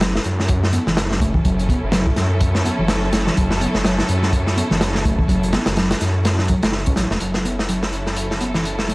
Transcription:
Already playing: F#1 F#3 C#4 E4 A4
0.01 F#3, snare, closed hi-hat
0.15 E4, snare
0.24 F#2, closed hi-hat
0.40 snare
0.48 kick, closed hi-hat
0.64 snare
0.73 B3, closed hi-hat
0.87 F#1 E3, snare
0.97 snare, closed hi-hat
1.11 snare
1.20 A3, kick, closed hi-hat
1.34 E3, kick
1.45 F#1 F#3, kick, closed hi-hat
1.59 closed hi-hat
1.69 B3, kick, closed hi-hat
1.83 F#1
1.92 F#3, snare, closed hi-hat
2.07 E4, kick
2.16 F#2, snare, closed hi-hat
2.41 kick, closed hi-hat
2.55 snare
2.65 B3, closed hi-hat
2.79 F#1 E3
2.88 snare, closed hi-hat
3.13 A3, snare, closed hi-hat
3.27 E3, snare
3.37 F#1 F#3, kick, closed hi-hat
3.51 snare
3.61 B3, closed hi-hat
3.75 F#1, snare
3.85 F#3, snare, closed hi-hat
3.99 E4, snare
4.09 F#2, closed hi-hat
4.23 snare
4.33 kick, closed hi-hat
4.47 snare
4.57 B3, closed hi-hat
4.71 F#1 E3, snare
4.81 snare, closed hi-hat
4.95 snare
5.05 A3, kick, closed hi-hat
5.19 E3, kick
5.28 F#1 F#3, kick, closed hi-hat
5.43 closed hi-hat
5.53 B3, snare, closed hi-hat
5.66 F#1, snare, closed hi-hat
5.77 F#3, snare, closed hi-hat
5.91 E4, snare, closed hi-hat
6.01 F#2, snare, closed hi-hat
6.25 snare, closed hi-hat
6.39 snare
6.48 F#3, kick, closed hi-hat
6.63 F#1 A3, snare, closed hi-hat
6.72 snare
6.86 C#2 C#4, kick, closed hi-hat
6.96 A1 F#3, snare, closed hi-hat
7.11 E1 A3, snare
7.20 F#1 F#3 C#4 E4 A4, closed hi-hat
7.34 snare
7.45 B3, closed hi-hat
7.59 snare
7.69 F#3, closed hi-hat
7.83 E4, snare
7.93 closed hi-hat
8.07 snare
8.16 closed hi-hat
8.31 snare
8.41 B3, closed hi-hat
8.54 E3, snare
8.65 closed hi-hat
8.79 snare
8.89 A3, closed hi-hat

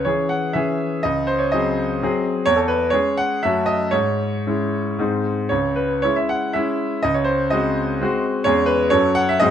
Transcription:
0.05 E3 C#4 G#4 C#5
0.29 F#5
0.53 E3 C#4 G#4 E5
1.03 C#2 D#5
1.27 C5
1.39 C#5
1.52 F#3 C4 G#4 D#5
2.03 F#3 C4 G#4
2.46 E2 C#5
2.56 A4
2.68 B4
2.90 G#3 C#4 G#4 C#5
3.17 F#5
3.43 F#2 A3 C#4 F#4 E5
3.66 D#5
3.91 G#2 C#5
4.47 G#3 C#4 E4
4.99 G#2 G#3 C4 D#4
5.49 C#2 C#5
5.76 B4
6.02 G#3 C#4 E4 C#5
6.16 E5
6.29 F#5
6.53 G#3 C#4 E4 E5
7.03 C#2 D#5
7.14 C#5
7.24 C5
7.50 G#3 C4 F#4 D#5
8.01 G#3 C4 F#4
8.44 E2 G#3 C#4 G#4 C#5
8.66 B4
8.90 F#2 F#3 C#4 A4 C#5
9.15 F#5
9.29 E5
9.40 G#2 F#3 C4 G#4 D#5

